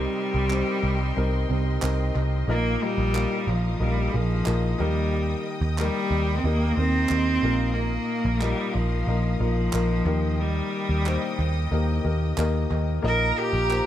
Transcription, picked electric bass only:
0.35 C2
0.83 C2
1.17 C2
1.50 C2
1.83 C2
2.15 C2
2.48 A#1
2.98 A#1
3.47 A#1
3.80 A#1
4.14 A#1
4.47 A#1
4.80 D#2
5.61 D#2
6.11 D#2
6.44 D#2
6.77 D#2
7.10 D#2
7.43 A#1
8.25 A#1
8.75 A#1
9.07 A#1
9.40 A#1
9.74 A#1
10.05 D#2
10.89 D#2
11.39 D#2
11.72 D#2
12.05 D#2
12.38 D#2
12.71 D#2
13.04 A#1
13.53 A#1

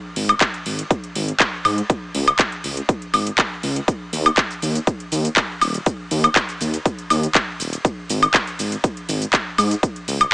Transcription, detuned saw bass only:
0.16 G#1
0.66 G#1
1.15 G#1
1.65 G#2
2.15 C#2
2.64 C#2
3.14 G#1
3.63 C#2
4.13 D#2
4.62 D#2
5.12 D#2
5.62 D#1
6.11 D#2
6.61 D#2
7.11 D#2
7.60 D#1
8.10 G#1
8.59 G#1
9.09 G#1
9.58 G#2
10.08 C#2

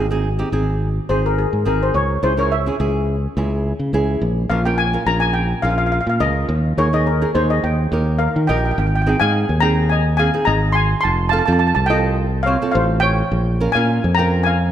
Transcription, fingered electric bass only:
Already playing: G#1
0.52 G#1
1.09 G#1
1.53 G#2
1.66 G#1
1.94 C#2
2.23 C#2
2.80 C#2
3.37 C#2
3.79 C#3
3.93 C#2
4.22 A#1
4.50 A#1
5.06 A#1
5.63 A#1
6.07 A#2
6.20 C#2
6.49 D#2
6.77 D#2
7.35 D#2
7.64 D#2
7.92 D#2
8.36 D#3
8.49 A#1
8.78 G#1
9.21 G#2
9.49 D#2
10.47 G#1
11.05 F1
11.48 F2
11.76 C2
12.75 A1
13.32 A#1
13.75 A#2
14.04 F2

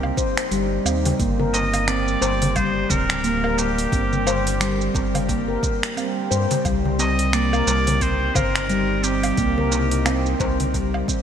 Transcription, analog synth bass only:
Already playing: C2
0.51 G1
0.85 D#2
1.19 G1
2.22 G1
2.90 D1
3.92 G1
4.95 G1
6.31 G2
6.65 C2
7.67 C2
8.35 G1
9.38 C2
10.40 C2

